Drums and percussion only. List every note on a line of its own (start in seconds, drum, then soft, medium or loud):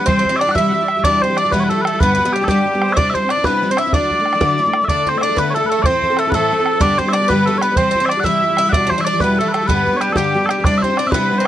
0.08 bodhran medium
0.25 bodhran soft
0.41 bodhran soft
0.49 bodhran medium
0.55 bodhran medium
0.88 bodhran medium
1.04 bodhran medium
1.22 bodhran soft
1.37 bodhran medium
1.52 bodhran medium
1.85 bodhran medium
2.01 bodhran medium
2.18 bodhran soft
2.48 bodhran medium
2.82 bodhran medium
2.97 bodhran medium
3.15 bodhran soft
3.29 bodhran medium
3.44 bodhran medium
3.77 bodhran medium
3.93 bodhran medium
4.11 bodhran soft
4.26 bodhran medium
4.33 bodhran medium
4.41 bodhran loud
4.73 bodhran medium
4.88 bodhran medium
5.06 bodhran soft
5.21 bodhran medium
5.37 bodhran medium
5.84 bodhran medium
6.02 bodhran soft
6.17 bodhran medium
6.32 bodhran medium
6.66 bodhran medium
6.81 bodhran medium
6.99 bodhran soft
7.14 bodhran medium
7.30 bodhran medium
7.62 bodhran medium
7.76 bodhran medium
7.94 bodhran soft
8.09 bodhran medium
8.24 bodhran medium
8.57 bodhran medium
8.73 bodhran medium
8.91 bodhran soft
9.20 bodhran medium
9.54 bodhran medium
9.69 bodhran medium
9.87 bodhran soft
10.01 bodhran medium
10.16 bodhran medium
10.49 bodhran medium
10.64 bodhran loud
10.83 bodhran soft
10.97 bodhran medium
11.12 bodhran loud